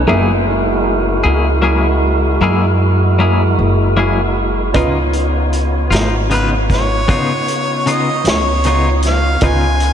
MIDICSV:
0, 0, Header, 1, 7, 480
1, 0, Start_track
1, 0, Tempo, 779221
1, 44, Time_signature, 12, 3, 24, 8
1, 6117, End_track
2, 0, Start_track
2, 0, Title_t, "Harmonica"
2, 0, Program_c, 0, 22
2, 3904, Note_on_c, 0, 71, 74
2, 4003, Note_off_c, 0, 71, 0
2, 4142, Note_on_c, 0, 73, 90
2, 4872, Note_on_c, 0, 75, 82
2, 4881, Note_off_c, 0, 73, 0
2, 5097, Note_off_c, 0, 75, 0
2, 5110, Note_on_c, 0, 73, 75
2, 5551, Note_off_c, 0, 73, 0
2, 5593, Note_on_c, 0, 77, 88
2, 5835, Note_on_c, 0, 80, 104
2, 5844, Note_off_c, 0, 77, 0
2, 6117, Note_off_c, 0, 80, 0
2, 6117, End_track
3, 0, Start_track
3, 0, Title_t, "Upright piano"
3, 0, Program_c, 1, 0
3, 46, Note_on_c, 1, 68, 53
3, 47, Note_on_c, 1, 70, 49
3, 47, Note_on_c, 1, 76, 60
3, 2898, Note_off_c, 1, 68, 0
3, 2898, Note_off_c, 1, 70, 0
3, 2898, Note_off_c, 1, 76, 0
3, 2917, Note_on_c, 1, 65, 55
3, 2919, Note_on_c, 1, 75, 55
3, 2920, Note_on_c, 1, 71, 49
3, 5775, Note_off_c, 1, 65, 0
3, 5776, Note_off_c, 1, 71, 0
3, 5776, Note_off_c, 1, 75, 0
3, 5799, Note_on_c, 1, 65, 47
3, 5800, Note_on_c, 1, 71, 40
3, 5802, Note_on_c, 1, 75, 46
3, 6117, Note_off_c, 1, 65, 0
3, 6117, Note_off_c, 1, 71, 0
3, 6117, Note_off_c, 1, 75, 0
3, 6117, End_track
4, 0, Start_track
4, 0, Title_t, "Tonewheel organ"
4, 0, Program_c, 2, 16
4, 44, Note_on_c, 2, 79, 53
4, 47, Note_on_c, 2, 65, 55
4, 51, Note_on_c, 2, 59, 52
4, 52, Note_on_c, 2, 56, 54
4, 284, Note_off_c, 2, 56, 0
4, 284, Note_off_c, 2, 79, 0
4, 285, Note_off_c, 2, 65, 0
4, 287, Note_off_c, 2, 59, 0
4, 287, Note_on_c, 2, 70, 56
4, 292, Note_on_c, 2, 56, 62
4, 294, Note_on_c, 2, 64, 53
4, 294, Note_on_c, 2, 66, 58
4, 2899, Note_off_c, 2, 70, 0
4, 2901, Note_off_c, 2, 56, 0
4, 2902, Note_off_c, 2, 64, 0
4, 2902, Note_off_c, 2, 66, 0
4, 2907, Note_on_c, 2, 65, 60
4, 2911, Note_on_c, 2, 73, 63
4, 2913, Note_on_c, 2, 59, 58
4, 2913, Note_on_c, 2, 63, 56
4, 5770, Note_off_c, 2, 65, 0
4, 5772, Note_off_c, 2, 59, 0
4, 5772, Note_off_c, 2, 73, 0
4, 5773, Note_off_c, 2, 63, 0
4, 5808, Note_on_c, 2, 63, 61
4, 5810, Note_on_c, 2, 73, 58
4, 5811, Note_on_c, 2, 71, 63
4, 5812, Note_on_c, 2, 65, 59
4, 6117, Note_off_c, 2, 63, 0
4, 6117, Note_off_c, 2, 65, 0
4, 6117, Note_off_c, 2, 71, 0
4, 6117, Note_off_c, 2, 73, 0
4, 6117, End_track
5, 0, Start_track
5, 0, Title_t, "Clean electric guitar"
5, 0, Program_c, 3, 27
5, 46, Note_on_c, 3, 54, 77
5, 52, Note_on_c, 3, 58, 75
5, 56, Note_on_c, 3, 68, 88
5, 57, Note_on_c, 3, 64, 76
5, 189, Note_off_c, 3, 54, 0
5, 192, Note_off_c, 3, 58, 0
5, 194, Note_off_c, 3, 64, 0
5, 194, Note_off_c, 3, 68, 0
5, 761, Note_on_c, 3, 68, 50
5, 770, Note_on_c, 3, 64, 41
5, 775, Note_on_c, 3, 58, 38
5, 906, Note_off_c, 3, 68, 0
5, 910, Note_off_c, 3, 64, 0
5, 913, Note_off_c, 3, 58, 0
5, 997, Note_on_c, 3, 54, 60
5, 999, Note_on_c, 3, 58, 54
5, 1005, Note_on_c, 3, 64, 58
5, 1010, Note_on_c, 3, 68, 65
5, 1144, Note_off_c, 3, 54, 0
5, 1145, Note_off_c, 3, 58, 0
5, 1148, Note_off_c, 3, 64, 0
5, 1150, Note_off_c, 3, 68, 0
5, 1487, Note_on_c, 3, 54, 75
5, 1494, Note_on_c, 3, 64, 88
5, 1495, Note_on_c, 3, 58, 81
5, 1498, Note_on_c, 3, 68, 86
5, 1628, Note_off_c, 3, 54, 0
5, 1632, Note_off_c, 3, 64, 0
5, 1633, Note_off_c, 3, 58, 0
5, 1634, Note_off_c, 3, 68, 0
5, 1963, Note_on_c, 3, 54, 54
5, 1970, Note_on_c, 3, 64, 62
5, 1971, Note_on_c, 3, 58, 60
5, 1979, Note_on_c, 3, 68, 64
5, 2107, Note_off_c, 3, 54, 0
5, 2110, Note_off_c, 3, 58, 0
5, 2110, Note_off_c, 3, 64, 0
5, 2114, Note_off_c, 3, 68, 0
5, 2443, Note_on_c, 3, 54, 58
5, 2444, Note_on_c, 3, 58, 64
5, 2448, Note_on_c, 3, 64, 58
5, 2458, Note_on_c, 3, 68, 66
5, 2586, Note_off_c, 3, 54, 0
5, 2587, Note_off_c, 3, 58, 0
5, 2589, Note_off_c, 3, 64, 0
5, 2594, Note_off_c, 3, 68, 0
5, 2924, Note_on_c, 3, 49, 77
5, 2928, Note_on_c, 3, 59, 79
5, 2931, Note_on_c, 3, 63, 72
5, 2932, Note_on_c, 3, 65, 86
5, 3067, Note_off_c, 3, 49, 0
5, 3069, Note_off_c, 3, 59, 0
5, 3070, Note_off_c, 3, 63, 0
5, 3071, Note_off_c, 3, 65, 0
5, 3638, Note_on_c, 3, 65, 50
5, 3650, Note_on_c, 3, 63, 52
5, 3653, Note_on_c, 3, 59, 42
5, 3784, Note_off_c, 3, 65, 0
5, 3790, Note_off_c, 3, 63, 0
5, 3791, Note_off_c, 3, 59, 0
5, 3879, Note_on_c, 3, 49, 50
5, 3889, Note_on_c, 3, 59, 57
5, 3891, Note_on_c, 3, 63, 49
5, 3896, Note_on_c, 3, 65, 56
5, 4024, Note_off_c, 3, 49, 0
5, 4029, Note_off_c, 3, 59, 0
5, 4030, Note_off_c, 3, 63, 0
5, 4033, Note_off_c, 3, 65, 0
5, 4362, Note_on_c, 3, 49, 69
5, 4365, Note_on_c, 3, 59, 79
5, 4373, Note_on_c, 3, 63, 73
5, 4374, Note_on_c, 3, 65, 79
5, 4506, Note_off_c, 3, 49, 0
5, 4507, Note_off_c, 3, 59, 0
5, 4511, Note_off_c, 3, 63, 0
5, 4512, Note_off_c, 3, 65, 0
5, 4842, Note_on_c, 3, 49, 55
5, 4848, Note_on_c, 3, 63, 50
5, 4849, Note_on_c, 3, 59, 57
5, 4855, Note_on_c, 3, 65, 55
5, 4986, Note_off_c, 3, 49, 0
5, 4989, Note_off_c, 3, 59, 0
5, 4989, Note_off_c, 3, 63, 0
5, 4992, Note_off_c, 3, 65, 0
5, 5328, Note_on_c, 3, 49, 54
5, 5336, Note_on_c, 3, 59, 60
5, 5338, Note_on_c, 3, 63, 56
5, 5346, Note_on_c, 3, 65, 61
5, 5469, Note_off_c, 3, 49, 0
5, 5473, Note_off_c, 3, 59, 0
5, 5474, Note_off_c, 3, 63, 0
5, 5478, Note_off_c, 3, 65, 0
5, 5807, Note_on_c, 3, 49, 71
5, 5811, Note_on_c, 3, 59, 68
5, 5812, Note_on_c, 3, 63, 73
5, 5814, Note_on_c, 3, 65, 73
5, 5948, Note_off_c, 3, 49, 0
5, 5950, Note_off_c, 3, 59, 0
5, 5951, Note_off_c, 3, 63, 0
5, 5951, Note_off_c, 3, 65, 0
5, 6117, End_track
6, 0, Start_track
6, 0, Title_t, "Upright bass"
6, 0, Program_c, 4, 32
6, 45, Note_on_c, 4, 30, 83
6, 739, Note_off_c, 4, 30, 0
6, 766, Note_on_c, 4, 37, 82
6, 1459, Note_off_c, 4, 37, 0
6, 1482, Note_on_c, 4, 42, 80
6, 2177, Note_off_c, 4, 42, 0
6, 2210, Note_on_c, 4, 30, 81
6, 2901, Note_off_c, 4, 30, 0
6, 2921, Note_on_c, 4, 37, 77
6, 3617, Note_off_c, 4, 37, 0
6, 3640, Note_on_c, 4, 32, 88
6, 4336, Note_off_c, 4, 32, 0
6, 4363, Note_on_c, 4, 49, 78
6, 5058, Note_off_c, 4, 49, 0
6, 5079, Note_on_c, 4, 37, 87
6, 5775, Note_off_c, 4, 37, 0
6, 5803, Note_on_c, 4, 37, 85
6, 6117, Note_off_c, 4, 37, 0
6, 6117, End_track
7, 0, Start_track
7, 0, Title_t, "Drums"
7, 2921, Note_on_c, 9, 42, 73
7, 2923, Note_on_c, 9, 36, 100
7, 2982, Note_off_c, 9, 42, 0
7, 2985, Note_off_c, 9, 36, 0
7, 3162, Note_on_c, 9, 42, 48
7, 3223, Note_off_c, 9, 42, 0
7, 3405, Note_on_c, 9, 42, 45
7, 3466, Note_off_c, 9, 42, 0
7, 3645, Note_on_c, 9, 42, 74
7, 3662, Note_on_c, 9, 38, 104
7, 3707, Note_off_c, 9, 42, 0
7, 3723, Note_off_c, 9, 38, 0
7, 3884, Note_on_c, 9, 42, 50
7, 3946, Note_off_c, 9, 42, 0
7, 4126, Note_on_c, 9, 36, 67
7, 4127, Note_on_c, 9, 42, 51
7, 4144, Note_on_c, 9, 38, 27
7, 4187, Note_off_c, 9, 36, 0
7, 4189, Note_off_c, 9, 42, 0
7, 4205, Note_off_c, 9, 38, 0
7, 4366, Note_on_c, 9, 36, 94
7, 4367, Note_on_c, 9, 42, 68
7, 4428, Note_off_c, 9, 36, 0
7, 4429, Note_off_c, 9, 42, 0
7, 4609, Note_on_c, 9, 42, 50
7, 4670, Note_off_c, 9, 42, 0
7, 4847, Note_on_c, 9, 42, 56
7, 4909, Note_off_c, 9, 42, 0
7, 5081, Note_on_c, 9, 42, 74
7, 5097, Note_on_c, 9, 38, 96
7, 5142, Note_off_c, 9, 42, 0
7, 5159, Note_off_c, 9, 38, 0
7, 5321, Note_on_c, 9, 42, 58
7, 5382, Note_off_c, 9, 42, 0
7, 5559, Note_on_c, 9, 42, 64
7, 5576, Note_on_c, 9, 38, 31
7, 5621, Note_off_c, 9, 42, 0
7, 5638, Note_off_c, 9, 38, 0
7, 5796, Note_on_c, 9, 42, 78
7, 5802, Note_on_c, 9, 36, 105
7, 5858, Note_off_c, 9, 42, 0
7, 5864, Note_off_c, 9, 36, 0
7, 6037, Note_on_c, 9, 42, 54
7, 6099, Note_off_c, 9, 42, 0
7, 6117, End_track
0, 0, End_of_file